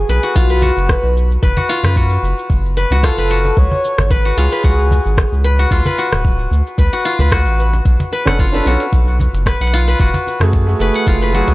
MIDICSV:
0, 0, Header, 1, 7, 480
1, 0, Start_track
1, 0, Key_signature, 3, "minor"
1, 0, Tempo, 535714
1, 1278, Time_signature, 4, 2, 24, 8
1, 10343, End_track
2, 0, Start_track
2, 0, Title_t, "Soft synth lead"
2, 0, Program_c, 0, 80
2, 0, Note_on_c, 0, 68, 94
2, 322, Note_on_c, 0, 66, 92
2, 336, Note_off_c, 0, 68, 0
2, 817, Note_on_c, 0, 71, 89
2, 830, Note_off_c, 0, 66, 0
2, 1176, Note_off_c, 0, 71, 0
2, 2722, Note_on_c, 0, 69, 96
2, 3208, Note_on_c, 0, 73, 116
2, 3222, Note_off_c, 0, 69, 0
2, 3680, Note_on_c, 0, 71, 96
2, 3694, Note_off_c, 0, 73, 0
2, 3915, Note_on_c, 0, 68, 91
2, 3928, Note_off_c, 0, 71, 0
2, 4876, Note_off_c, 0, 68, 0
2, 6794, Note_on_c, 0, 71, 105
2, 6903, Note_off_c, 0, 71, 0
2, 10343, End_track
3, 0, Start_track
3, 0, Title_t, "Guzheng"
3, 0, Program_c, 1, 107
3, 0, Note_on_c, 1, 66, 72
3, 83, Note_on_c, 1, 71, 68
3, 203, Note_off_c, 1, 66, 0
3, 207, Note_on_c, 1, 66, 64
3, 319, Note_on_c, 1, 65, 92
3, 373, Note_off_c, 1, 66, 0
3, 442, Note_off_c, 1, 71, 0
3, 446, Note_on_c, 1, 71, 72
3, 556, Note_on_c, 1, 66, 68
3, 610, Note_off_c, 1, 65, 0
3, 1275, Note_off_c, 1, 71, 0
3, 1279, Note_on_c, 1, 71, 79
3, 1401, Note_off_c, 1, 66, 0
3, 1405, Note_on_c, 1, 66, 69
3, 1517, Note_on_c, 1, 65, 94
3, 1571, Note_off_c, 1, 66, 0
3, 1644, Note_off_c, 1, 71, 0
3, 1648, Note_on_c, 1, 71, 71
3, 1761, Note_on_c, 1, 66, 74
3, 1815, Note_off_c, 1, 65, 0
3, 2477, Note_off_c, 1, 71, 0
3, 2481, Note_on_c, 1, 71, 71
3, 2610, Note_off_c, 1, 66, 0
3, 2613, Note_on_c, 1, 66, 70
3, 2719, Note_on_c, 1, 65, 101
3, 2772, Note_off_c, 1, 66, 0
3, 2846, Note_off_c, 1, 71, 0
3, 2850, Note_on_c, 1, 71, 68
3, 2962, Note_on_c, 1, 66, 70
3, 3015, Note_off_c, 1, 65, 0
3, 3676, Note_off_c, 1, 71, 0
3, 3679, Note_on_c, 1, 71, 80
3, 3806, Note_off_c, 1, 66, 0
3, 3810, Note_on_c, 1, 66, 68
3, 3920, Note_on_c, 1, 65, 89
3, 3974, Note_off_c, 1, 66, 0
3, 4045, Note_off_c, 1, 71, 0
3, 4049, Note_on_c, 1, 71, 70
3, 4158, Note_on_c, 1, 66, 75
3, 4212, Note_off_c, 1, 65, 0
3, 4874, Note_off_c, 1, 71, 0
3, 4878, Note_on_c, 1, 71, 71
3, 5006, Note_off_c, 1, 66, 0
3, 5010, Note_on_c, 1, 66, 72
3, 5121, Note_on_c, 1, 65, 88
3, 5174, Note_off_c, 1, 66, 0
3, 5247, Note_off_c, 1, 71, 0
3, 5250, Note_on_c, 1, 71, 72
3, 5361, Note_on_c, 1, 66, 72
3, 5415, Note_off_c, 1, 65, 0
3, 6076, Note_off_c, 1, 71, 0
3, 6080, Note_on_c, 1, 71, 70
3, 6205, Note_off_c, 1, 66, 0
3, 6208, Note_on_c, 1, 66, 72
3, 6318, Note_on_c, 1, 65, 92
3, 6372, Note_off_c, 1, 66, 0
3, 6444, Note_off_c, 1, 71, 0
3, 6448, Note_on_c, 1, 71, 66
3, 6557, Note_on_c, 1, 66, 80
3, 6611, Note_off_c, 1, 65, 0
3, 7277, Note_off_c, 1, 71, 0
3, 7280, Note_on_c, 1, 71, 67
3, 7412, Note_on_c, 1, 78, 70
3, 7523, Note_on_c, 1, 65, 98
3, 7577, Note_off_c, 1, 66, 0
3, 7577, Note_off_c, 1, 78, 0
3, 7652, Note_off_c, 1, 71, 0
3, 7655, Note_on_c, 1, 71, 67
3, 7767, Note_on_c, 1, 66, 67
3, 7820, Note_off_c, 1, 65, 0
3, 8481, Note_off_c, 1, 71, 0
3, 8485, Note_on_c, 1, 71, 77
3, 8612, Note_on_c, 1, 78, 73
3, 8723, Note_on_c, 1, 65, 94
3, 8777, Note_off_c, 1, 66, 0
3, 8777, Note_off_c, 1, 78, 0
3, 8849, Note_off_c, 1, 71, 0
3, 8852, Note_on_c, 1, 71, 71
3, 8963, Note_on_c, 1, 66, 76
3, 9017, Note_off_c, 1, 65, 0
3, 9682, Note_off_c, 1, 71, 0
3, 9686, Note_on_c, 1, 71, 69
3, 9814, Note_on_c, 1, 78, 75
3, 9924, Note_on_c, 1, 65, 93
3, 9978, Note_off_c, 1, 66, 0
3, 9978, Note_off_c, 1, 78, 0
3, 10049, Note_off_c, 1, 71, 0
3, 10053, Note_on_c, 1, 71, 71
3, 10166, Note_on_c, 1, 66, 71
3, 10219, Note_off_c, 1, 65, 0
3, 10343, Note_off_c, 1, 66, 0
3, 10343, Note_off_c, 1, 71, 0
3, 10343, End_track
4, 0, Start_track
4, 0, Title_t, "Felt piano"
4, 0, Program_c, 2, 0
4, 7395, Note_on_c, 2, 61, 72
4, 7406, Note_on_c, 2, 62, 65
4, 7413, Note_on_c, 2, 69, 77
4, 7525, Note_off_c, 2, 61, 0
4, 7531, Note_off_c, 2, 62, 0
4, 7534, Note_off_c, 2, 69, 0
4, 7636, Note_on_c, 2, 61, 83
4, 7645, Note_on_c, 2, 62, 75
4, 7653, Note_on_c, 2, 69, 89
4, 7726, Note_off_c, 2, 61, 0
4, 7730, Note_off_c, 2, 62, 0
4, 7734, Note_off_c, 2, 69, 0
4, 7751, Note_on_c, 2, 61, 76
4, 7759, Note_on_c, 2, 62, 71
4, 7772, Note_on_c, 2, 69, 82
4, 7895, Note_off_c, 2, 61, 0
4, 7899, Note_off_c, 2, 62, 0
4, 7905, Note_off_c, 2, 69, 0
4, 9319, Note_on_c, 2, 57, 89
4, 9328, Note_on_c, 2, 66, 75
4, 9336, Note_on_c, 2, 68, 103
4, 9532, Note_off_c, 2, 57, 0
4, 9537, Note_off_c, 2, 66, 0
4, 9541, Note_off_c, 2, 68, 0
4, 9555, Note_on_c, 2, 57, 82
4, 9563, Note_on_c, 2, 66, 79
4, 9573, Note_on_c, 2, 68, 92
4, 9645, Note_off_c, 2, 57, 0
4, 9649, Note_off_c, 2, 66, 0
4, 9654, Note_off_c, 2, 68, 0
4, 9670, Note_on_c, 2, 57, 95
4, 9679, Note_on_c, 2, 66, 87
4, 9688, Note_on_c, 2, 68, 104
4, 10125, Note_off_c, 2, 57, 0
4, 10132, Note_off_c, 2, 66, 0
4, 10136, Note_off_c, 2, 68, 0
4, 10138, Note_on_c, 2, 57, 84
4, 10156, Note_on_c, 2, 54, 84
4, 10175, Note_on_c, 2, 68, 92
4, 10343, Note_off_c, 2, 54, 0
4, 10343, Note_off_c, 2, 57, 0
4, 10343, Note_off_c, 2, 68, 0
4, 10343, End_track
5, 0, Start_track
5, 0, Title_t, "Analog synth bass"
5, 0, Program_c, 3, 38
5, 80, Note_on_c, 3, 35, 73
5, 176, Note_off_c, 3, 35, 0
5, 318, Note_on_c, 3, 35, 89
5, 635, Note_off_c, 3, 35, 0
5, 688, Note_on_c, 3, 30, 82
5, 863, Note_off_c, 3, 30, 0
5, 924, Note_on_c, 3, 35, 88
5, 1232, Note_off_c, 3, 35, 0
5, 1279, Note_on_c, 3, 30, 86
5, 1375, Note_off_c, 3, 30, 0
5, 1643, Note_on_c, 3, 42, 77
5, 1951, Note_off_c, 3, 42, 0
5, 1996, Note_on_c, 3, 30, 83
5, 2093, Note_off_c, 3, 30, 0
5, 2238, Note_on_c, 3, 30, 95
5, 2555, Note_off_c, 3, 30, 0
5, 2604, Note_on_c, 3, 37, 82
5, 2781, Note_off_c, 3, 37, 0
5, 2843, Note_on_c, 3, 30, 87
5, 3151, Note_off_c, 3, 30, 0
5, 3199, Note_on_c, 3, 37, 85
5, 3295, Note_off_c, 3, 37, 0
5, 3569, Note_on_c, 3, 32, 75
5, 3874, Note_off_c, 3, 32, 0
5, 3919, Note_on_c, 3, 37, 77
5, 4015, Note_off_c, 3, 37, 0
5, 4158, Note_on_c, 3, 37, 90
5, 4475, Note_off_c, 3, 37, 0
5, 4531, Note_on_c, 3, 32, 84
5, 4704, Note_off_c, 3, 32, 0
5, 4770, Note_on_c, 3, 37, 87
5, 5075, Note_off_c, 3, 37, 0
5, 5115, Note_on_c, 3, 38, 90
5, 5213, Note_off_c, 3, 38, 0
5, 5487, Note_on_c, 3, 26, 77
5, 5794, Note_off_c, 3, 26, 0
5, 5834, Note_on_c, 3, 38, 83
5, 5933, Note_off_c, 3, 38, 0
5, 6077, Note_on_c, 3, 38, 82
5, 6174, Note_off_c, 3, 38, 0
5, 6444, Note_on_c, 3, 38, 86
5, 6685, Note_on_c, 3, 33, 83
5, 6699, Note_off_c, 3, 38, 0
5, 6992, Note_off_c, 3, 33, 0
5, 7035, Note_on_c, 3, 35, 86
5, 7133, Note_off_c, 3, 35, 0
5, 7408, Note_on_c, 3, 30, 79
5, 7714, Note_off_c, 3, 30, 0
5, 7759, Note_on_c, 3, 35, 77
5, 7855, Note_off_c, 3, 35, 0
5, 7997, Note_on_c, 3, 35, 91
5, 8314, Note_off_c, 3, 35, 0
5, 8364, Note_on_c, 3, 30, 87
5, 8541, Note_off_c, 3, 30, 0
5, 8605, Note_on_c, 3, 35, 88
5, 8913, Note_off_c, 3, 35, 0
5, 8956, Note_on_c, 3, 30, 92
5, 9053, Note_off_c, 3, 30, 0
5, 9318, Note_on_c, 3, 42, 76
5, 9629, Note_off_c, 3, 42, 0
5, 9675, Note_on_c, 3, 30, 78
5, 9773, Note_off_c, 3, 30, 0
5, 9916, Note_on_c, 3, 30, 90
5, 10234, Note_off_c, 3, 30, 0
5, 10287, Note_on_c, 3, 37, 89
5, 10343, Note_off_c, 3, 37, 0
5, 10343, End_track
6, 0, Start_track
6, 0, Title_t, "Cajon"
6, 555, Note_on_c, 9, 36, 68
6, 563, Note_on_c, 9, 38, 31
6, 644, Note_off_c, 9, 36, 0
6, 652, Note_off_c, 9, 38, 0
6, 805, Note_on_c, 9, 38, 72
6, 894, Note_off_c, 9, 38, 0
6, 1408, Note_on_c, 9, 36, 88
6, 1497, Note_off_c, 9, 36, 0
6, 1518, Note_on_c, 9, 38, 35
6, 1607, Note_off_c, 9, 38, 0
6, 1653, Note_on_c, 9, 36, 81
6, 1742, Note_off_c, 9, 36, 0
6, 2616, Note_on_c, 9, 38, 70
6, 2705, Note_off_c, 9, 38, 0
6, 2723, Note_on_c, 9, 38, 81
6, 2813, Note_off_c, 9, 38, 0
6, 3091, Note_on_c, 9, 38, 62
6, 3180, Note_off_c, 9, 38, 0
6, 3329, Note_on_c, 9, 36, 79
6, 3418, Note_off_c, 9, 36, 0
6, 3450, Note_on_c, 9, 38, 34
6, 3539, Note_off_c, 9, 38, 0
6, 3572, Note_on_c, 9, 36, 80
6, 3662, Note_off_c, 9, 36, 0
6, 4398, Note_on_c, 9, 36, 84
6, 4404, Note_on_c, 9, 38, 39
6, 4488, Note_off_c, 9, 36, 0
6, 4493, Note_off_c, 9, 38, 0
6, 4643, Note_on_c, 9, 38, 76
6, 4733, Note_off_c, 9, 38, 0
6, 5247, Note_on_c, 9, 36, 89
6, 5337, Note_off_c, 9, 36, 0
6, 5358, Note_on_c, 9, 38, 29
6, 5448, Note_off_c, 9, 38, 0
6, 5487, Note_on_c, 9, 36, 75
6, 5577, Note_off_c, 9, 36, 0
6, 6443, Note_on_c, 9, 36, 80
6, 6444, Note_on_c, 9, 38, 65
6, 6533, Note_off_c, 9, 36, 0
6, 6534, Note_off_c, 9, 38, 0
6, 6552, Note_on_c, 9, 38, 71
6, 6642, Note_off_c, 9, 38, 0
6, 6928, Note_on_c, 9, 38, 62
6, 7018, Note_off_c, 9, 38, 0
6, 7166, Note_on_c, 9, 36, 81
6, 7256, Note_off_c, 9, 36, 0
6, 7273, Note_on_c, 9, 38, 32
6, 7362, Note_off_c, 9, 38, 0
6, 7402, Note_on_c, 9, 36, 76
6, 7491, Note_off_c, 9, 36, 0
6, 8235, Note_on_c, 9, 38, 30
6, 8241, Note_on_c, 9, 36, 75
6, 8325, Note_off_c, 9, 38, 0
6, 8331, Note_off_c, 9, 36, 0
6, 8478, Note_on_c, 9, 38, 71
6, 8568, Note_off_c, 9, 38, 0
6, 9085, Note_on_c, 9, 36, 83
6, 9174, Note_off_c, 9, 36, 0
6, 9202, Note_on_c, 9, 38, 36
6, 9292, Note_off_c, 9, 38, 0
6, 9326, Note_on_c, 9, 36, 82
6, 9416, Note_off_c, 9, 36, 0
6, 10282, Note_on_c, 9, 38, 68
6, 10343, Note_off_c, 9, 38, 0
6, 10343, End_track
7, 0, Start_track
7, 0, Title_t, "Drums"
7, 91, Note_on_c, 9, 82, 66
7, 181, Note_off_c, 9, 82, 0
7, 217, Note_on_c, 9, 82, 31
7, 307, Note_off_c, 9, 82, 0
7, 319, Note_on_c, 9, 36, 95
7, 327, Note_on_c, 9, 82, 42
7, 408, Note_off_c, 9, 36, 0
7, 417, Note_off_c, 9, 82, 0
7, 459, Note_on_c, 9, 82, 19
7, 548, Note_off_c, 9, 82, 0
7, 568, Note_on_c, 9, 82, 70
7, 658, Note_off_c, 9, 82, 0
7, 700, Note_on_c, 9, 82, 32
7, 789, Note_off_c, 9, 82, 0
7, 799, Note_on_c, 9, 36, 92
7, 801, Note_on_c, 9, 37, 76
7, 809, Note_on_c, 9, 82, 40
7, 888, Note_off_c, 9, 36, 0
7, 890, Note_off_c, 9, 37, 0
7, 898, Note_off_c, 9, 82, 0
7, 940, Note_on_c, 9, 82, 21
7, 1030, Note_off_c, 9, 82, 0
7, 1049, Note_on_c, 9, 82, 72
7, 1139, Note_off_c, 9, 82, 0
7, 1177, Note_on_c, 9, 82, 33
7, 1267, Note_off_c, 9, 82, 0
7, 1279, Note_on_c, 9, 36, 101
7, 1288, Note_on_c, 9, 82, 43
7, 1368, Note_off_c, 9, 36, 0
7, 1378, Note_off_c, 9, 82, 0
7, 1416, Note_on_c, 9, 82, 22
7, 1506, Note_off_c, 9, 82, 0
7, 1528, Note_on_c, 9, 82, 82
7, 1618, Note_off_c, 9, 82, 0
7, 1653, Note_on_c, 9, 37, 70
7, 1661, Note_on_c, 9, 82, 30
7, 1743, Note_off_c, 9, 37, 0
7, 1750, Note_off_c, 9, 82, 0
7, 1758, Note_on_c, 9, 36, 105
7, 1770, Note_on_c, 9, 82, 42
7, 1847, Note_off_c, 9, 36, 0
7, 1859, Note_off_c, 9, 82, 0
7, 1900, Note_on_c, 9, 82, 20
7, 1990, Note_off_c, 9, 82, 0
7, 2010, Note_on_c, 9, 82, 69
7, 2100, Note_off_c, 9, 82, 0
7, 2140, Note_on_c, 9, 82, 31
7, 2230, Note_off_c, 9, 82, 0
7, 2238, Note_on_c, 9, 36, 91
7, 2250, Note_on_c, 9, 82, 45
7, 2328, Note_off_c, 9, 36, 0
7, 2340, Note_off_c, 9, 82, 0
7, 2379, Note_on_c, 9, 82, 20
7, 2469, Note_off_c, 9, 82, 0
7, 2490, Note_on_c, 9, 82, 69
7, 2580, Note_off_c, 9, 82, 0
7, 2622, Note_on_c, 9, 82, 33
7, 2711, Note_off_c, 9, 82, 0
7, 2717, Note_on_c, 9, 36, 96
7, 2724, Note_on_c, 9, 37, 76
7, 2732, Note_on_c, 9, 82, 46
7, 2807, Note_off_c, 9, 36, 0
7, 2814, Note_off_c, 9, 37, 0
7, 2821, Note_off_c, 9, 82, 0
7, 2858, Note_on_c, 9, 82, 21
7, 2947, Note_off_c, 9, 82, 0
7, 2965, Note_on_c, 9, 82, 79
7, 3054, Note_off_c, 9, 82, 0
7, 3097, Note_on_c, 9, 82, 34
7, 3186, Note_off_c, 9, 82, 0
7, 3198, Note_on_c, 9, 36, 107
7, 3205, Note_on_c, 9, 82, 43
7, 3288, Note_off_c, 9, 36, 0
7, 3295, Note_off_c, 9, 82, 0
7, 3336, Note_on_c, 9, 82, 21
7, 3426, Note_off_c, 9, 82, 0
7, 3446, Note_on_c, 9, 82, 81
7, 3536, Note_off_c, 9, 82, 0
7, 3570, Note_on_c, 9, 37, 71
7, 3578, Note_on_c, 9, 82, 31
7, 3660, Note_off_c, 9, 37, 0
7, 3668, Note_off_c, 9, 82, 0
7, 3679, Note_on_c, 9, 36, 106
7, 3689, Note_on_c, 9, 82, 44
7, 3768, Note_off_c, 9, 36, 0
7, 3778, Note_off_c, 9, 82, 0
7, 3815, Note_on_c, 9, 82, 22
7, 3905, Note_off_c, 9, 82, 0
7, 3925, Note_on_c, 9, 82, 71
7, 4014, Note_off_c, 9, 82, 0
7, 4057, Note_on_c, 9, 82, 31
7, 4146, Note_off_c, 9, 82, 0
7, 4158, Note_on_c, 9, 36, 97
7, 4167, Note_on_c, 9, 82, 46
7, 4247, Note_off_c, 9, 36, 0
7, 4257, Note_off_c, 9, 82, 0
7, 4296, Note_on_c, 9, 82, 21
7, 4386, Note_off_c, 9, 82, 0
7, 4408, Note_on_c, 9, 82, 75
7, 4497, Note_off_c, 9, 82, 0
7, 4536, Note_on_c, 9, 82, 34
7, 4626, Note_off_c, 9, 82, 0
7, 4637, Note_on_c, 9, 36, 101
7, 4642, Note_on_c, 9, 37, 78
7, 4650, Note_on_c, 9, 82, 45
7, 4727, Note_off_c, 9, 36, 0
7, 4732, Note_off_c, 9, 37, 0
7, 4740, Note_off_c, 9, 82, 0
7, 4778, Note_on_c, 9, 82, 23
7, 4868, Note_off_c, 9, 82, 0
7, 4884, Note_on_c, 9, 82, 79
7, 4973, Note_off_c, 9, 82, 0
7, 5016, Note_on_c, 9, 82, 36
7, 5106, Note_off_c, 9, 82, 0
7, 5117, Note_on_c, 9, 36, 99
7, 5124, Note_on_c, 9, 82, 46
7, 5207, Note_off_c, 9, 36, 0
7, 5213, Note_off_c, 9, 82, 0
7, 5254, Note_on_c, 9, 82, 22
7, 5344, Note_off_c, 9, 82, 0
7, 5362, Note_on_c, 9, 82, 80
7, 5452, Note_off_c, 9, 82, 0
7, 5488, Note_on_c, 9, 37, 70
7, 5496, Note_on_c, 9, 82, 32
7, 5578, Note_off_c, 9, 37, 0
7, 5586, Note_off_c, 9, 82, 0
7, 5597, Note_on_c, 9, 36, 107
7, 5605, Note_on_c, 9, 82, 42
7, 5687, Note_off_c, 9, 36, 0
7, 5695, Note_off_c, 9, 82, 0
7, 5739, Note_on_c, 9, 82, 23
7, 5829, Note_off_c, 9, 82, 0
7, 5847, Note_on_c, 9, 82, 69
7, 5937, Note_off_c, 9, 82, 0
7, 5977, Note_on_c, 9, 82, 30
7, 6067, Note_off_c, 9, 82, 0
7, 6076, Note_on_c, 9, 36, 96
7, 6087, Note_on_c, 9, 82, 44
7, 6166, Note_off_c, 9, 36, 0
7, 6177, Note_off_c, 9, 82, 0
7, 6220, Note_on_c, 9, 82, 21
7, 6310, Note_off_c, 9, 82, 0
7, 6326, Note_on_c, 9, 82, 76
7, 6415, Note_off_c, 9, 82, 0
7, 6456, Note_on_c, 9, 82, 31
7, 6545, Note_off_c, 9, 82, 0
7, 6557, Note_on_c, 9, 36, 97
7, 6560, Note_on_c, 9, 37, 73
7, 6568, Note_on_c, 9, 82, 44
7, 6646, Note_off_c, 9, 36, 0
7, 6650, Note_off_c, 9, 37, 0
7, 6658, Note_off_c, 9, 82, 0
7, 6698, Note_on_c, 9, 82, 22
7, 6787, Note_off_c, 9, 82, 0
7, 6805, Note_on_c, 9, 82, 76
7, 6895, Note_off_c, 9, 82, 0
7, 6934, Note_on_c, 9, 82, 32
7, 7024, Note_off_c, 9, 82, 0
7, 7037, Note_on_c, 9, 36, 104
7, 7040, Note_on_c, 9, 42, 51
7, 7048, Note_on_c, 9, 82, 44
7, 7127, Note_off_c, 9, 36, 0
7, 7129, Note_off_c, 9, 42, 0
7, 7137, Note_off_c, 9, 82, 0
7, 7170, Note_on_c, 9, 42, 41
7, 7178, Note_on_c, 9, 82, 22
7, 7259, Note_off_c, 9, 42, 0
7, 7267, Note_off_c, 9, 82, 0
7, 7288, Note_on_c, 9, 82, 80
7, 7378, Note_off_c, 9, 82, 0
7, 7413, Note_on_c, 9, 37, 69
7, 7420, Note_on_c, 9, 82, 30
7, 7502, Note_off_c, 9, 37, 0
7, 7510, Note_off_c, 9, 82, 0
7, 7518, Note_on_c, 9, 36, 95
7, 7523, Note_on_c, 9, 42, 47
7, 7531, Note_on_c, 9, 82, 42
7, 7608, Note_off_c, 9, 36, 0
7, 7613, Note_off_c, 9, 42, 0
7, 7620, Note_off_c, 9, 82, 0
7, 7659, Note_on_c, 9, 82, 20
7, 7748, Note_off_c, 9, 82, 0
7, 7761, Note_on_c, 9, 42, 26
7, 7768, Note_on_c, 9, 82, 69
7, 7850, Note_off_c, 9, 42, 0
7, 7858, Note_off_c, 9, 82, 0
7, 7888, Note_on_c, 9, 42, 37
7, 7895, Note_on_c, 9, 82, 31
7, 7977, Note_off_c, 9, 42, 0
7, 7985, Note_off_c, 9, 82, 0
7, 7997, Note_on_c, 9, 36, 92
7, 7999, Note_on_c, 9, 42, 53
7, 8007, Note_on_c, 9, 82, 40
7, 8087, Note_off_c, 9, 36, 0
7, 8089, Note_off_c, 9, 42, 0
7, 8097, Note_off_c, 9, 82, 0
7, 8136, Note_on_c, 9, 82, 20
7, 8225, Note_off_c, 9, 82, 0
7, 8247, Note_on_c, 9, 82, 72
7, 8337, Note_off_c, 9, 82, 0
7, 8374, Note_on_c, 9, 42, 37
7, 8382, Note_on_c, 9, 82, 31
7, 8463, Note_off_c, 9, 42, 0
7, 8471, Note_off_c, 9, 82, 0
7, 8477, Note_on_c, 9, 36, 95
7, 8482, Note_on_c, 9, 37, 74
7, 8482, Note_on_c, 9, 42, 50
7, 8490, Note_on_c, 9, 82, 41
7, 8566, Note_off_c, 9, 36, 0
7, 8572, Note_off_c, 9, 37, 0
7, 8572, Note_off_c, 9, 42, 0
7, 8580, Note_off_c, 9, 82, 0
7, 8614, Note_on_c, 9, 42, 38
7, 8621, Note_on_c, 9, 82, 22
7, 8668, Note_off_c, 9, 42, 0
7, 8668, Note_on_c, 9, 42, 49
7, 8711, Note_off_c, 9, 82, 0
7, 8732, Note_on_c, 9, 82, 79
7, 8757, Note_off_c, 9, 42, 0
7, 8822, Note_off_c, 9, 82, 0
7, 8850, Note_on_c, 9, 42, 39
7, 8858, Note_on_c, 9, 82, 33
7, 8940, Note_off_c, 9, 42, 0
7, 8948, Note_off_c, 9, 82, 0
7, 8956, Note_on_c, 9, 36, 101
7, 8960, Note_on_c, 9, 42, 51
7, 8968, Note_on_c, 9, 82, 44
7, 9046, Note_off_c, 9, 36, 0
7, 9050, Note_off_c, 9, 42, 0
7, 9058, Note_off_c, 9, 82, 0
7, 9090, Note_on_c, 9, 42, 42
7, 9098, Note_on_c, 9, 82, 21
7, 9180, Note_off_c, 9, 42, 0
7, 9187, Note_off_c, 9, 82, 0
7, 9208, Note_on_c, 9, 82, 70
7, 9298, Note_off_c, 9, 82, 0
7, 9327, Note_on_c, 9, 37, 70
7, 9335, Note_on_c, 9, 82, 28
7, 9417, Note_off_c, 9, 37, 0
7, 9424, Note_off_c, 9, 82, 0
7, 9437, Note_on_c, 9, 36, 98
7, 9437, Note_on_c, 9, 42, 51
7, 9445, Note_on_c, 9, 82, 39
7, 9527, Note_off_c, 9, 36, 0
7, 9527, Note_off_c, 9, 42, 0
7, 9534, Note_off_c, 9, 82, 0
7, 9574, Note_on_c, 9, 82, 21
7, 9664, Note_off_c, 9, 82, 0
7, 9680, Note_on_c, 9, 42, 27
7, 9688, Note_on_c, 9, 82, 71
7, 9769, Note_off_c, 9, 42, 0
7, 9777, Note_off_c, 9, 82, 0
7, 9807, Note_on_c, 9, 42, 41
7, 9814, Note_on_c, 9, 82, 30
7, 9896, Note_off_c, 9, 42, 0
7, 9904, Note_off_c, 9, 82, 0
7, 9918, Note_on_c, 9, 36, 88
7, 9919, Note_on_c, 9, 42, 55
7, 9927, Note_on_c, 9, 82, 40
7, 10007, Note_off_c, 9, 36, 0
7, 10009, Note_off_c, 9, 42, 0
7, 10017, Note_off_c, 9, 82, 0
7, 10056, Note_on_c, 9, 82, 21
7, 10146, Note_off_c, 9, 82, 0
7, 10166, Note_on_c, 9, 82, 73
7, 10256, Note_off_c, 9, 82, 0
7, 10287, Note_on_c, 9, 42, 39
7, 10295, Note_on_c, 9, 82, 32
7, 10343, Note_off_c, 9, 42, 0
7, 10343, Note_off_c, 9, 82, 0
7, 10343, End_track
0, 0, End_of_file